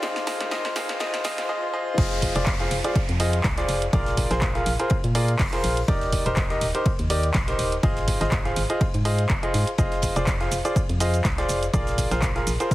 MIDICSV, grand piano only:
0, 0, Header, 1, 2, 480
1, 0, Start_track
1, 0, Tempo, 487805
1, 28, Time_signature, 4, 2, 24, 8
1, 12543, End_track
2, 0, Start_track
2, 0, Title_t, "Grand piano"
2, 0, Program_c, 0, 0
2, 26, Note_on_c, 0, 65, 98
2, 26, Note_on_c, 0, 68, 89
2, 26, Note_on_c, 0, 72, 91
2, 26, Note_on_c, 0, 75, 105
2, 249, Note_off_c, 0, 65, 0
2, 250, Note_off_c, 0, 68, 0
2, 250, Note_off_c, 0, 72, 0
2, 250, Note_off_c, 0, 75, 0
2, 266, Note_on_c, 0, 65, 99
2, 266, Note_on_c, 0, 68, 93
2, 266, Note_on_c, 0, 72, 88
2, 266, Note_on_c, 0, 75, 107
2, 489, Note_off_c, 0, 65, 0
2, 489, Note_off_c, 0, 68, 0
2, 489, Note_off_c, 0, 72, 0
2, 489, Note_off_c, 0, 75, 0
2, 507, Note_on_c, 0, 65, 103
2, 507, Note_on_c, 0, 68, 91
2, 507, Note_on_c, 0, 72, 94
2, 507, Note_on_c, 0, 75, 113
2, 730, Note_off_c, 0, 65, 0
2, 730, Note_off_c, 0, 68, 0
2, 730, Note_off_c, 0, 72, 0
2, 730, Note_off_c, 0, 75, 0
2, 746, Note_on_c, 0, 68, 94
2, 746, Note_on_c, 0, 72, 97
2, 746, Note_on_c, 0, 75, 108
2, 747, Note_on_c, 0, 65, 104
2, 970, Note_off_c, 0, 65, 0
2, 970, Note_off_c, 0, 68, 0
2, 970, Note_off_c, 0, 72, 0
2, 970, Note_off_c, 0, 75, 0
2, 987, Note_on_c, 0, 65, 104
2, 987, Note_on_c, 0, 68, 94
2, 987, Note_on_c, 0, 72, 95
2, 987, Note_on_c, 0, 75, 113
2, 1210, Note_off_c, 0, 65, 0
2, 1210, Note_off_c, 0, 68, 0
2, 1210, Note_off_c, 0, 72, 0
2, 1210, Note_off_c, 0, 75, 0
2, 1227, Note_on_c, 0, 65, 104
2, 1227, Note_on_c, 0, 68, 94
2, 1227, Note_on_c, 0, 72, 91
2, 1227, Note_on_c, 0, 75, 115
2, 1450, Note_off_c, 0, 65, 0
2, 1450, Note_off_c, 0, 68, 0
2, 1450, Note_off_c, 0, 72, 0
2, 1450, Note_off_c, 0, 75, 0
2, 1466, Note_on_c, 0, 65, 101
2, 1466, Note_on_c, 0, 68, 91
2, 1466, Note_on_c, 0, 72, 96
2, 1466, Note_on_c, 0, 75, 115
2, 1689, Note_off_c, 0, 75, 0
2, 1690, Note_off_c, 0, 65, 0
2, 1690, Note_off_c, 0, 68, 0
2, 1690, Note_off_c, 0, 72, 0
2, 1707, Note_on_c, 0, 65, 104
2, 1707, Note_on_c, 0, 68, 94
2, 1707, Note_on_c, 0, 72, 93
2, 1707, Note_on_c, 0, 75, 113
2, 1930, Note_off_c, 0, 65, 0
2, 1930, Note_off_c, 0, 68, 0
2, 1930, Note_off_c, 0, 72, 0
2, 1930, Note_off_c, 0, 75, 0
2, 1946, Note_on_c, 0, 75, 103
2, 1947, Note_on_c, 0, 65, 99
2, 1947, Note_on_c, 0, 68, 86
2, 1947, Note_on_c, 0, 72, 86
2, 2287, Note_off_c, 0, 65, 0
2, 2287, Note_off_c, 0, 68, 0
2, 2287, Note_off_c, 0, 72, 0
2, 2287, Note_off_c, 0, 75, 0
2, 2318, Note_on_c, 0, 65, 94
2, 2318, Note_on_c, 0, 68, 89
2, 2318, Note_on_c, 0, 72, 88
2, 2318, Note_on_c, 0, 74, 105
2, 2463, Note_off_c, 0, 65, 0
2, 2463, Note_off_c, 0, 68, 0
2, 2463, Note_off_c, 0, 72, 0
2, 2463, Note_off_c, 0, 74, 0
2, 2558, Note_on_c, 0, 68, 81
2, 2558, Note_on_c, 0, 72, 79
2, 2559, Note_on_c, 0, 65, 87
2, 2559, Note_on_c, 0, 77, 93
2, 2703, Note_off_c, 0, 65, 0
2, 2703, Note_off_c, 0, 68, 0
2, 2703, Note_off_c, 0, 72, 0
2, 2703, Note_off_c, 0, 77, 0
2, 2799, Note_on_c, 0, 65, 90
2, 2799, Note_on_c, 0, 68, 85
2, 2799, Note_on_c, 0, 72, 81
2, 2799, Note_on_c, 0, 74, 100
2, 2943, Note_off_c, 0, 65, 0
2, 2943, Note_off_c, 0, 68, 0
2, 2943, Note_off_c, 0, 72, 0
2, 2943, Note_off_c, 0, 74, 0
2, 3148, Note_on_c, 0, 65, 98
2, 3148, Note_on_c, 0, 68, 87
2, 3148, Note_on_c, 0, 72, 89
2, 3149, Note_on_c, 0, 75, 111
2, 3309, Note_off_c, 0, 65, 0
2, 3309, Note_off_c, 0, 68, 0
2, 3309, Note_off_c, 0, 72, 0
2, 3309, Note_off_c, 0, 75, 0
2, 3519, Note_on_c, 0, 72, 84
2, 3520, Note_on_c, 0, 65, 89
2, 3520, Note_on_c, 0, 68, 83
2, 3520, Note_on_c, 0, 74, 99
2, 3763, Note_off_c, 0, 65, 0
2, 3763, Note_off_c, 0, 68, 0
2, 3763, Note_off_c, 0, 72, 0
2, 3763, Note_off_c, 0, 74, 0
2, 3867, Note_on_c, 0, 68, 86
2, 3868, Note_on_c, 0, 65, 94
2, 3868, Note_on_c, 0, 70, 88
2, 3868, Note_on_c, 0, 74, 109
2, 4207, Note_off_c, 0, 68, 0
2, 4208, Note_off_c, 0, 65, 0
2, 4208, Note_off_c, 0, 70, 0
2, 4208, Note_off_c, 0, 74, 0
2, 4239, Note_on_c, 0, 70, 90
2, 4240, Note_on_c, 0, 65, 96
2, 4240, Note_on_c, 0, 68, 89
2, 4240, Note_on_c, 0, 72, 106
2, 4383, Note_off_c, 0, 65, 0
2, 4383, Note_off_c, 0, 68, 0
2, 4383, Note_off_c, 0, 70, 0
2, 4383, Note_off_c, 0, 72, 0
2, 4479, Note_on_c, 0, 77, 97
2, 4480, Note_on_c, 0, 65, 87
2, 4480, Note_on_c, 0, 68, 80
2, 4480, Note_on_c, 0, 70, 79
2, 4623, Note_off_c, 0, 65, 0
2, 4623, Note_off_c, 0, 68, 0
2, 4623, Note_off_c, 0, 70, 0
2, 4623, Note_off_c, 0, 77, 0
2, 4719, Note_on_c, 0, 65, 90
2, 4719, Note_on_c, 0, 68, 81
2, 4719, Note_on_c, 0, 70, 84
2, 4719, Note_on_c, 0, 72, 99
2, 4863, Note_off_c, 0, 65, 0
2, 4863, Note_off_c, 0, 68, 0
2, 4863, Note_off_c, 0, 70, 0
2, 4863, Note_off_c, 0, 72, 0
2, 5067, Note_on_c, 0, 65, 100
2, 5067, Note_on_c, 0, 68, 92
2, 5067, Note_on_c, 0, 70, 95
2, 5068, Note_on_c, 0, 74, 111
2, 5228, Note_off_c, 0, 65, 0
2, 5228, Note_off_c, 0, 68, 0
2, 5228, Note_off_c, 0, 70, 0
2, 5228, Note_off_c, 0, 74, 0
2, 5439, Note_on_c, 0, 65, 86
2, 5439, Note_on_c, 0, 68, 83
2, 5439, Note_on_c, 0, 70, 84
2, 5439, Note_on_c, 0, 72, 96
2, 5682, Note_off_c, 0, 65, 0
2, 5682, Note_off_c, 0, 68, 0
2, 5683, Note_off_c, 0, 70, 0
2, 5683, Note_off_c, 0, 72, 0
2, 5789, Note_on_c, 0, 63, 96
2, 5789, Note_on_c, 0, 67, 84
2, 5789, Note_on_c, 0, 70, 90
2, 5789, Note_on_c, 0, 74, 103
2, 6128, Note_off_c, 0, 63, 0
2, 6128, Note_off_c, 0, 67, 0
2, 6128, Note_off_c, 0, 70, 0
2, 6128, Note_off_c, 0, 74, 0
2, 6159, Note_on_c, 0, 72, 107
2, 6160, Note_on_c, 0, 63, 97
2, 6160, Note_on_c, 0, 67, 91
2, 6160, Note_on_c, 0, 70, 90
2, 6303, Note_off_c, 0, 63, 0
2, 6303, Note_off_c, 0, 67, 0
2, 6303, Note_off_c, 0, 70, 0
2, 6303, Note_off_c, 0, 72, 0
2, 6398, Note_on_c, 0, 63, 88
2, 6398, Note_on_c, 0, 67, 82
2, 6398, Note_on_c, 0, 75, 99
2, 6399, Note_on_c, 0, 70, 78
2, 6543, Note_off_c, 0, 63, 0
2, 6543, Note_off_c, 0, 67, 0
2, 6543, Note_off_c, 0, 70, 0
2, 6543, Note_off_c, 0, 75, 0
2, 6638, Note_on_c, 0, 63, 91
2, 6638, Note_on_c, 0, 67, 82
2, 6638, Note_on_c, 0, 70, 81
2, 6638, Note_on_c, 0, 72, 100
2, 6782, Note_off_c, 0, 67, 0
2, 6783, Note_off_c, 0, 63, 0
2, 6783, Note_off_c, 0, 70, 0
2, 6783, Note_off_c, 0, 72, 0
2, 6987, Note_on_c, 0, 63, 99
2, 6987, Note_on_c, 0, 67, 93
2, 6987, Note_on_c, 0, 70, 93
2, 6987, Note_on_c, 0, 74, 106
2, 7148, Note_off_c, 0, 63, 0
2, 7148, Note_off_c, 0, 67, 0
2, 7148, Note_off_c, 0, 70, 0
2, 7148, Note_off_c, 0, 74, 0
2, 7358, Note_on_c, 0, 67, 80
2, 7358, Note_on_c, 0, 72, 99
2, 7359, Note_on_c, 0, 63, 89
2, 7359, Note_on_c, 0, 70, 83
2, 7602, Note_off_c, 0, 63, 0
2, 7602, Note_off_c, 0, 67, 0
2, 7602, Note_off_c, 0, 70, 0
2, 7602, Note_off_c, 0, 72, 0
2, 7706, Note_on_c, 0, 65, 96
2, 7706, Note_on_c, 0, 68, 90
2, 7706, Note_on_c, 0, 72, 85
2, 7706, Note_on_c, 0, 75, 107
2, 8047, Note_off_c, 0, 65, 0
2, 8047, Note_off_c, 0, 68, 0
2, 8047, Note_off_c, 0, 72, 0
2, 8047, Note_off_c, 0, 75, 0
2, 8077, Note_on_c, 0, 72, 88
2, 8078, Note_on_c, 0, 65, 96
2, 8078, Note_on_c, 0, 68, 85
2, 8078, Note_on_c, 0, 75, 104
2, 8222, Note_off_c, 0, 65, 0
2, 8222, Note_off_c, 0, 68, 0
2, 8222, Note_off_c, 0, 72, 0
2, 8222, Note_off_c, 0, 75, 0
2, 8317, Note_on_c, 0, 65, 90
2, 8317, Note_on_c, 0, 68, 79
2, 8317, Note_on_c, 0, 72, 82
2, 8317, Note_on_c, 0, 77, 97
2, 8462, Note_off_c, 0, 65, 0
2, 8462, Note_off_c, 0, 68, 0
2, 8462, Note_off_c, 0, 72, 0
2, 8462, Note_off_c, 0, 77, 0
2, 8558, Note_on_c, 0, 65, 93
2, 8558, Note_on_c, 0, 68, 82
2, 8558, Note_on_c, 0, 72, 83
2, 8558, Note_on_c, 0, 75, 96
2, 8702, Note_off_c, 0, 65, 0
2, 8702, Note_off_c, 0, 68, 0
2, 8702, Note_off_c, 0, 72, 0
2, 8702, Note_off_c, 0, 75, 0
2, 8906, Note_on_c, 0, 65, 100
2, 8906, Note_on_c, 0, 68, 95
2, 8906, Note_on_c, 0, 72, 95
2, 8906, Note_on_c, 0, 75, 108
2, 9067, Note_off_c, 0, 72, 0
2, 9068, Note_off_c, 0, 65, 0
2, 9068, Note_off_c, 0, 68, 0
2, 9068, Note_off_c, 0, 75, 0
2, 9277, Note_on_c, 0, 65, 90
2, 9278, Note_on_c, 0, 68, 85
2, 9278, Note_on_c, 0, 72, 85
2, 9278, Note_on_c, 0, 75, 100
2, 9522, Note_off_c, 0, 65, 0
2, 9522, Note_off_c, 0, 68, 0
2, 9522, Note_off_c, 0, 72, 0
2, 9522, Note_off_c, 0, 75, 0
2, 9626, Note_on_c, 0, 65, 98
2, 9626, Note_on_c, 0, 68, 88
2, 9626, Note_on_c, 0, 72, 86
2, 9626, Note_on_c, 0, 75, 106
2, 9967, Note_off_c, 0, 65, 0
2, 9967, Note_off_c, 0, 68, 0
2, 9967, Note_off_c, 0, 72, 0
2, 9967, Note_off_c, 0, 75, 0
2, 9999, Note_on_c, 0, 65, 94
2, 9999, Note_on_c, 0, 68, 88
2, 9999, Note_on_c, 0, 72, 87
2, 9999, Note_on_c, 0, 74, 106
2, 10143, Note_off_c, 0, 65, 0
2, 10143, Note_off_c, 0, 68, 0
2, 10143, Note_off_c, 0, 72, 0
2, 10143, Note_off_c, 0, 74, 0
2, 10239, Note_on_c, 0, 72, 79
2, 10240, Note_on_c, 0, 65, 88
2, 10240, Note_on_c, 0, 68, 80
2, 10240, Note_on_c, 0, 77, 94
2, 10383, Note_off_c, 0, 65, 0
2, 10383, Note_off_c, 0, 68, 0
2, 10383, Note_off_c, 0, 72, 0
2, 10383, Note_off_c, 0, 77, 0
2, 10479, Note_on_c, 0, 65, 88
2, 10479, Note_on_c, 0, 68, 83
2, 10479, Note_on_c, 0, 72, 83
2, 10479, Note_on_c, 0, 74, 100
2, 10623, Note_off_c, 0, 65, 0
2, 10623, Note_off_c, 0, 68, 0
2, 10623, Note_off_c, 0, 72, 0
2, 10623, Note_off_c, 0, 74, 0
2, 10827, Note_on_c, 0, 65, 104
2, 10827, Note_on_c, 0, 68, 91
2, 10827, Note_on_c, 0, 72, 90
2, 10827, Note_on_c, 0, 75, 110
2, 10988, Note_off_c, 0, 65, 0
2, 10988, Note_off_c, 0, 68, 0
2, 10988, Note_off_c, 0, 72, 0
2, 10988, Note_off_c, 0, 75, 0
2, 11200, Note_on_c, 0, 65, 89
2, 11200, Note_on_c, 0, 68, 80
2, 11200, Note_on_c, 0, 72, 83
2, 11200, Note_on_c, 0, 74, 99
2, 11443, Note_off_c, 0, 65, 0
2, 11443, Note_off_c, 0, 68, 0
2, 11443, Note_off_c, 0, 72, 0
2, 11443, Note_off_c, 0, 74, 0
2, 11548, Note_on_c, 0, 65, 95
2, 11548, Note_on_c, 0, 68, 86
2, 11548, Note_on_c, 0, 70, 86
2, 11548, Note_on_c, 0, 74, 109
2, 11888, Note_off_c, 0, 65, 0
2, 11888, Note_off_c, 0, 68, 0
2, 11888, Note_off_c, 0, 70, 0
2, 11888, Note_off_c, 0, 74, 0
2, 11920, Note_on_c, 0, 65, 96
2, 11920, Note_on_c, 0, 68, 87
2, 11920, Note_on_c, 0, 70, 87
2, 11920, Note_on_c, 0, 72, 103
2, 12063, Note_off_c, 0, 68, 0
2, 12063, Note_off_c, 0, 70, 0
2, 12063, Note_off_c, 0, 72, 0
2, 12064, Note_off_c, 0, 65, 0
2, 12159, Note_on_c, 0, 65, 87
2, 12159, Note_on_c, 0, 68, 80
2, 12159, Note_on_c, 0, 70, 83
2, 12159, Note_on_c, 0, 77, 97
2, 12303, Note_off_c, 0, 65, 0
2, 12303, Note_off_c, 0, 68, 0
2, 12303, Note_off_c, 0, 70, 0
2, 12303, Note_off_c, 0, 77, 0
2, 12400, Note_on_c, 0, 65, 89
2, 12400, Note_on_c, 0, 68, 81
2, 12400, Note_on_c, 0, 70, 84
2, 12400, Note_on_c, 0, 72, 99
2, 12543, Note_off_c, 0, 65, 0
2, 12543, Note_off_c, 0, 68, 0
2, 12543, Note_off_c, 0, 70, 0
2, 12543, Note_off_c, 0, 72, 0
2, 12543, End_track
0, 0, End_of_file